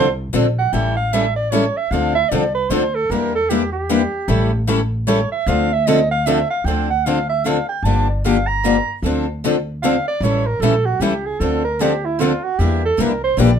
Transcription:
Already playing: upright bass C2
0.33 upright bass A#1, steel-string acoustic guitar D3 F3 C4 D4 A4
0.59 soprano saxophone F#5
0.73 upright bass A1, steel-string acoustic guitar E3 G3 C#4 E4 A4, soprano saxophone G5
0.97 soprano saxophone F5
1.13 steel-string acoustic guitar E3 G3 C#4 E4 A4, soprano saxophone E5
1.36 soprano saxophone D5
1.51 steel-string acoustic guitar E3 G3 C#4 E4 A4, soprano saxophone C#5
1.77 soprano saxophone E5
1.91 upright bass D2, steel-string acoustic guitar D3 F3 C4 D4 A4, soprano saxophone F5
2.15 soprano saxophone E5
2.29 upright bass C2, steel-string acoustic guitar D3 F3 C4 D4, soprano saxophone D5
2.33 steel-string acoustic guitar A4
2.55 soprano saxophone B4
2.70 upright bass D2, steel-string acoustic guitar D3 F3 C4 D4 A4, soprano saxophone C5
2.95 soprano saxophone A4
3.10 upright bass E2, steel-string acoustic guitar E3 G3 A#3 D4 E4 G4 A#4, soprano saxophone A#4
3.35 soprano saxophone A4
3.50 steel-string acoustic guitar E3 G3 A#3 D4 E4 G4 A#4, soprano saxophone G4
3.72 soprano saxophone G4
3.89 steel-string acoustic guitar E3 G3 A#3 D4 E4 G4 A#4
4.28 upright bass A1, steel-string acoustic guitar E3 G3 C#4 E4 A4
4.67 steel-string acoustic guitar E3 G3 C#4 E4 A4
5.07 steel-string acoustic guitar E3 G3 C#4 E4 A4, soprano saxophone C#5
5.32 soprano saxophone E5
5.46 upright bass D2, steel-string acoustic guitar D3 F3 C4 D4 A4, soprano saxophone F5
5.73 soprano saxophone E5
5.86 steel-string acoustic guitar D3 F3 C4 D4 A4, soprano saxophone D#5
6.11 soprano saxophone F5
6.26 steel-string acoustic guitar D3 F3 C4 D4 A4, soprano saxophone E5
6.50 soprano saxophone F5
6.64 upright bass D2, steel-string acoustic guitar D3 F3 C4 D4 A4, soprano saxophone G5
6.90 soprano saxophone F#5
7.05 steel-string acoustic guitar D3 F3 C4 D4 A4, soprano saxophone F5
7.29 soprano saxophone E5
7.44 steel-string acoustic guitar D3 F3 C4 D4 A4, soprano saxophone F5
7.69 soprano saxophone G5
7.83 upright bass G1, steel-string acoustic guitar D3 F3 A#3 D4, soprano saxophone A5
7.87 steel-string acoustic guitar G4
8.09 soprano saxophone D5
8.24 steel-string acoustic guitar D3 F3 A#3 D4 G4, soprano saxophone F5
8.47 soprano saxophone A#5
8.64 steel-string acoustic guitar D3 F3 A#3 D4 G4
9.02 upright bass D2, steel-string acoustic guitar D3 F3 C4 D4 A4
9.44 steel-string acoustic guitar D3 F3 C4 D4 A4
9.82 steel-string acoustic guitar D3 F3 C4 D4 A4, soprano saxophone F5
10.08 soprano saxophone D5
10.21 upright bass A1, steel-string acoustic guitar E3 G3 C#4 E4 A4, soprano saxophone C#5
10.46 soprano saxophone A#4
10.60 upright bass A#1, steel-string acoustic guitar E3 G3 C#4 E4 A4, soprano saxophone A4
10.86 soprano saxophone F#4
11.00 upright bass C#2, steel-string acoustic guitar E3 G3 C#4 E4 A4, soprano saxophone G4
11.26 soprano saxophone G#4
11.40 upright bass D2, steel-string acoustic guitar D3 F3 C4 D4 A4, soprano saxophone A4
11.64 soprano saxophone A#4
11.79 steel-string acoustic guitar D3 F3 C4 D4 A4, soprano saxophone G4
12.05 soprano saxophone E4
12.19 steel-string acoustic guitar D3 F3 C4 D4 A4, soprano saxophone F4
12.44 soprano saxophone F#4
12.59 upright bass E2, steel-string acoustic guitar E3 G3 A#3 D4 E4 G4 A#4, soprano saxophone G4
12.85 soprano saxophone A4
12.97 upright bass C2, steel-string acoustic guitar E3 G3 A#3 D4 E4 G4 A#4, soprano saxophone A#4
13.24 soprano saxophone C5
13.37 upright bass A#1, steel-string acoustic guitar E3 G3 A#3 D4 E4 G4 A#4, soprano saxophone D5

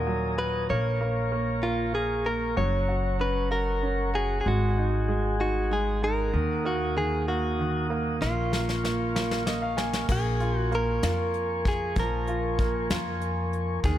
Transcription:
Already playing: upright bass D#2, grand piano A#2 D#3 F#4, clean electric guitar A#4, tonewheel organ G#5 A#5 D#6
0.07 grand piano F#3
0.38 grand piano F#4, clean electric guitar B4
0.70 upright bass A#1, grand piano A#3, clean electric guitar C#5, tonewheel organ F5 C#6
1.01 grand piano A#3
1.32 grand piano A#3
1.63 grand piano A#3, clean electric guitar F4
1.94 grand piano A#3, clean electric guitar G#4
2.26 grand piano A#3, clean electric guitar A#4
2.57 upright bass F#1, grand piano F#3, clean electric guitar C#5, tonewheel organ F#5
2.89 grand piano F#4
3.20 grand piano C#4, clean electric guitar B4
3.51 grand piano F#4, clean electric guitar A#4
3.83 grand piano C#4
4.14 grand piano F#4, clean electric guitar G#4
4.41 clean electric guitar G#4
4.46 upright bass G#1, grand piano G#3, clean electric guitar F#4, tonewheel organ G#4 G#5
4.78 grand piano D#4
5.08 grand piano G#3
5.40 grand piano D#4, clean electric guitar F#4
5.71 grand piano G#3, clean electric guitar G#4
6.02 grand piano D#4, clean electric guitar A#4
6.33 upright bass D#2, grand piano D#3, tonewheel organ A#4 D#6
6.65 grand piano A#3, clean electric guitar F#4
6.96 grand piano D#3, clean electric guitar G#4
7.28 grand piano A#3, clean electric guitar F#4
7.59 grand piano D#3
7.90 grand piano A#3
8.21 upright bass A#1, grand piano A#3, clean electric guitar F4, tonewheel organ A#4 F5 C#6, snare
8.53 grand piano A#3, snare
8.69 snare
8.84 grand piano A#3, snare
9.15 grand piano A#3, snare
9.31 snare
9.46 grand piano A#3 D#5, snare
9.62 grand piano F5
9.77 grand piano A#3 G#5, snare
9.93 snare
10.08 upright bass A#1, grand piano A#3, clean electric guitar G#4, tonewheel organ A#4 G#5 C#6, kick, crash
10.40 grand piano F4, closed hi-hat
10.60 clean electric guitar F#4
10.72 grand piano A#3, clean electric guitar A#4, closed hi-hat
11.03 upright bass F2, grand piano F4, snare, closed hi-hat
11.34 closed hi-hat
11.65 clean electric guitar G#4, kick, closed hi-hat
11.96 upright bass A#1, grand piano F3, clean electric guitar A#4, kick, closed hi-hat
12.27 grand piano F4, closed hi-hat
12.59 grand piano A#3, kick, closed hi-hat
12.90 upright bass F2, grand piano F4, snare, closed hi-hat
13.21 closed hi-hat
13.53 closed hi-hat
13.84 upright bass D#2, grand piano D#3, clean electric guitar G#4, tonewheel organ F#5 D#6, kick, closed hi-hat

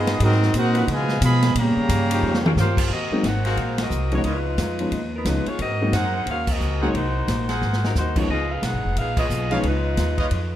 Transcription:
Already playing: upright bass G2, trombone section B3 D#4 G#4, trumpet section B3 F4 G#4 D#5
0.07 snare, ride
0.20 upright bass G#2, trombone section F#3 G#3 C4 D#4 F#4 A#4, trumpet section C4 F#4 D#5, kick, ride
0.24 trumpet section A#4
0.32 snare
0.42 snare
0.54 upright bass A#2, trombone section C4 D#4 F#4, trumpet section D#4 A#4 C5 F#5, kick, hi-hat pedal, ride
0.75 trombone section F3 C#4 D#4 B4, ride
0.87 trombone section B2 F3 G#3, upright bass C#3, kick, ride
0.92 trumpet section F4 B4 D#5 G#5
1.09 snare
1.21 upright bass B2, trombone section F3 G#3 B3, trumpet section G#4 D#5 F5 B5, kick, hi-hat pedal, ride
1.42 snare, ride
1.55 upright bass A#2, trombone section C#3 G3 A#3, kick, ride
1.59 trumpet section G4 C#5 F5 A#5
1.76 muted upright bass stroke
1.89 upright bass G2, kick, hi-hat pedal, ride
2.11 trombone section F3 C#4 D#4 G4, ride
2.22 upright bass F2
2.34 snare
2.46 saxophone section G3 C#4 F4 A#4, mid tom
2.56 upright bass G2, saxophone section A#3 F4 G4 C5, snare, hi-hat pedal
2.77 kick, crash
2.90 upright bass D#2, saxophone section C4 F#4 A#4 D#5, kick
3.10 grand piano F#3 G#3 A#3 C4 D#4, muted upright bass stroke
3.23 upright bass G#1, saxophone section D#4 A#4 C5 F#5, kick, snare, hi-hat pedal, ride
3.44 saxophone section D#4 A#4 C5 F5, trumpet section F#4 G#4 A#4 C5, ride
3.57 upright bass A#1, kick, ride
3.78 saxophone section C4 F#4 A#4 D#5, snare, ride
3.90 upright bass C2, hi-hat pedal
4.12 grand piano F3 G#3 B3 C#4 D#4, saxophone section A#3 D#4 F#4 C#5, ride
4.24 upright bass C#2, trumpet section F4 B4 C#5 D#5, kick, ride
4.28 saxophone section G#3 D#4 F4 B4
4.57 upright bass F2, kick, snare, hi-hat pedal, ride
4.79 grand piano F3 G#3 B3 C#4 D#4, ride
4.91 upright bass D#2, kick, ride
5.16 saxophone section F#3 B3 D#4 A#4
5.25 upright bass C#2, grand piano F3 G#3 B3 C#4 D#4, saxophone section G#3 D#4 F4 B4, kick, snare, hi-hat pedal, ride
5.46 saxophone section B3 F4 G#4 C#5, muted upright bass stroke, ride
5.59 upright bass G#2, saxophone section C4 F#4 A#4 D#5, kick, ride
5.82 grand piano F#3 G#3 A#3 C4 D#4
5.92 upright bass F#2, saxophone section D#4 A#4 C5 F#5, trumpet section G#4 A#4 C5 F#5, kick, snare, hi-hat pedal, ride
6.17 saxophone section D#4 A#4 C5 F#5
6.26 upright bass D#2, saxophone section C#4 F#4 A#4 F5, kick, ride
6.47 saxophone section C4 F#4 A#4 D#5, kick, crash
6.60 upright bass C#2, hi-hat pedal
6.81 grand piano F#3 G#3 A#3 C4 D#4, saxophone section A#3 D#4 F#4 C#5, trumpet section G#4 A#4 C5 F#5
6.94 upright bass C2, saxophone section A#3 D#4 F#4 C5, kick, ride
7.28 upright bass A#1, kick, snare, hi-hat pedal, ride
7.49 trumpet section G#4 A#4 C5 F#5, snare, ride
7.61 upright bass G#1, snare
7.73 snare
7.84 saxophone section F#3 C4 D#4 A#4, snare
7.95 upright bass D#2, saxophone section A#3 D#4 F#4 C5, snare, hi-hat pedal
8.16 grand piano F3 G#3 B3 C#4 D#4, saxophone section A#3 D#4 F#4 C#5, kick, crash
8.28 upright bass C#2, saxophone section B3 F4 G#4 D#5, kick
8.52 saxophone section D#4 G#4 B4 F5
8.62 upright bass B1, saxophone section D#4 G#4 B4 F#5, kick, snare, hi-hat pedal, ride
8.73 upright bass G#1
8.85 upright bass F1
8.96 upright bass A#1, saxophone section D#4 G#4 B4 F5, kick, ride
9.17 saxophone section B3 F4 G#4 D#5, trumpet section F4 B4 C#5 D#5, kick, crash
9.29 upright bass B1, hi-hat pedal
9.51 grand piano F3 G#3 B3 C#4 D#4, trumpet section F4 B4 C#5 F5, saxophone section F4 C#5, ride
9.55 saxophone section B3 G#4
9.63 upright bass C#2, kick, ride
9.68 saxophone section G#3 D#4 F4 B4
9.97 upright bass D#2, kick, snare, hi-hat pedal, ride
10.18 trumpet section F4 B4 C#5 D#5, kick, ride
10.31 upright bass F2, kick, ride

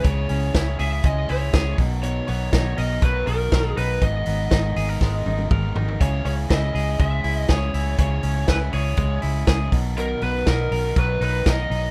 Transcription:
Already playing: clean electric guitar G#3 C#4 E4 G#4
0.04 fingered electric bass C#2, overdriven electric guitar C#3 G#3 C#4 E4 G#4, lead electric guitar C#5, kick, closed hi-hat
0.29 fingered electric bass C#2, overdriven electric guitar C#4 E4 G#4, open hi-hat
0.54 fingered electric bass C#2, overdriven electric guitar C#3 G#3 C#4 E4 G#4, kick, snare, closed hi-hat
0.79 fingered electric bass C#2, overdriven electric guitar C#4 E4 G#4, lead electric guitar E5, open hi-hat
1.03 fingered electric bass C#2, overdriven electric guitar G#3 C#4 E4 G#4, lead electric guitar D#5, kick, closed hi-hat
1.28 fingered electric bass C#2, overdriven electric guitar C#4 E4 G#4, lead electric guitar C#5, open hi-hat
1.53 fingered electric bass C#2, overdriven electric guitar C#3 G#3 C#4 E4 G#4, kick, snare, closed hi-hat
1.78 fingered electric bass B1, clean electric guitar B2, overdriven electric guitar F#3 B3 D#4 A#4, kick, open hi-hat
2.03 overdriven electric guitar B2 D#3 F#3 B3 D#4 A#4, lead electric guitar C#5, closed hi-hat
2.27 fingered electric bass B1, overdriven electric guitar F#3 B3 D#4 A#4, lead electric guitar C#5, open hi-hat
2.52 fingered electric bass B1, overdriven electric guitar B2 D#3 F#3 B3 D#4 A#4, kick, snare, closed hi-hat
2.77 fingered electric bass B1, overdriven electric guitar F#3 B3 D#4 A#4, lead electric guitar D#5, open hi-hat
3.01 fingered electric bass B1, overdriven electric guitar F#3 B3 D#4 A#4, lead electric guitar B4, kick, closed hi-hat
3.26 fingered electric bass B1, overdriven electric guitar F#3 B3 D#4 A#4, lead electric guitar A#4, open hi-hat
3.52 fingered electric bass B1, overdriven electric guitar B2 D#3 F#3 B3 D#4 A#4, kick, snare, closed hi-hat
3.77 fingered electric bass B1, overdriven electric guitar F#3 B3 D#4 A#4, lead electric guitar B4, open hi-hat
4.01 fingered electric bass G#1, overdriven electric guitar G#2 D#3 G#3 B3 D#4 A#4, lead electric guitar D#5, kick, closed hi-hat
4.26 fingered electric bass G#1, overdriven electric guitar G#3 B3 D#4 A#4, open hi-hat
4.51 fingered electric bass G#1, overdriven electric guitar G#2 D#3 G#3 B3 D#4 A#4, kick, snare, closed hi-hat
4.76 fingered electric bass G#1, overdriven electric guitar G#3 B3 D#4 A#4, clean electric guitar G#4, open hi-hat
4.89 clean electric guitar A#4
5.01 fingered electric bass G#1, overdriven electric guitar G#3 B3 D#4 A#4, kick, snare
5.26 fingered electric bass G#1, overdriven electric guitar G#3 B3 D#4 A#4, high tom
5.38 high tom
5.50 fingered electric bass G#1, overdriven electric guitar G#2 D#3 G#3 B3 D#4 A#4, kick, mid tom
5.75 fingered electric bass G#1, overdriven electric guitar G#3 B3 D#4 A#4, floor tom
5.88 floor tom
6.00 fingered electric bass C#2, overdriven electric guitar C#3 G#3 C#4 E4 G#4, lead electric guitar C#5, kick, closed hi-hat
6.24 fingered electric bass C#2, overdriven electric guitar C#4 E4 G#4, lead electric guitar C#5, open hi-hat
6.49 fingered electric bass C#2, overdriven electric guitar C#3 G#3 C#4 E4 G#4, lead electric guitar D#5, kick, snare, closed hi-hat
6.73 fingered electric bass C#2, overdriven electric guitar C#4 E4 G#4, open hi-hat
6.99 fingered electric bass C#2, overdriven electric guitar G#3 C#4 E4 G#4, lead electric guitar E5, kick, closed hi-hat
7.24 fingered electric bass C#2, overdriven electric guitar C#4 E4 G#4, open hi-hat
7.38 lead electric guitar D#5
7.48 fingered electric bass C#2, overdriven electric guitar C#3 G#3 C#4 E4 G#4, lead electric guitar C#5, kick, snare, closed hi-hat
7.73 fingered electric bass C#2, overdriven electric guitar C#4 E4 G#4, open hi-hat
7.98 fingered electric bass C#2, overdriven electric guitar C#3 G#3 C#4 E4 G#4, lead electric guitar C#5, kick, closed hi-hat
8.23 fingered electric bass C#2, overdriven electric guitar C#4 E4 G#4, open hi-hat
8.47 fingered electric bass C#2, overdriven electric guitar C#3 G#3 C#4 E4 G#4, lead electric guitar B4, kick, snare, closed hi-hat
8.72 fingered electric bass C#2, overdriven electric guitar C#4 E4 G#4, lead electric guitar C#5, open hi-hat
8.97 fingered electric bass C#2, overdriven electric guitar G#3 C#4 E4 G#4, kick, closed hi-hat
9.22 fingered electric bass C#2, overdriven electric guitar C#4 E4 G#4, open hi-hat
9.47 fingered electric bass C#2, overdriven electric guitar C#3 G#3 C#4 E4 G#4, kick, snare, closed hi-hat
9.72 fingered electric bass B1, clean electric guitar B2, overdriven electric guitar F#3 B3 D#4 A#4, kick, open hi-hat
9.97 overdriven electric guitar B2 D#3 F#3 B3 D#4 A#4, lead electric guitar A#4, closed hi-hat
10.21 fingered electric bass B1, overdriven electric guitar F#3 B3 D#4 A#4, lead electric guitar B4, open hi-hat
10.46 fingered electric bass B1, overdriven electric guitar B2 D#3 F#3 B3 D#4 A#4, lead electric guitar A#4, kick, snare, closed hi-hat
10.71 fingered electric bass B1, overdriven electric guitar F#3 B3 D#4 A#4, open hi-hat
10.96 fingered electric bass B1, overdriven electric guitar F#3 B3 D#4 A#4, lead electric guitar B4, kick, closed hi-hat
11.21 fingered electric bass B1, overdriven electric guitar F#3 B3 D#4 A#4, lead electric guitar B4, open hi-hat
11.46 fingered electric bass B1, overdriven electric guitar B2 D#3 F#3 B3 D#4 A#4, lead electric guitar D#5, kick, snare, closed hi-hat
11.70 fingered electric bass B1, overdriven electric guitar F#3 B3 D#4 A#4, open hi-hat

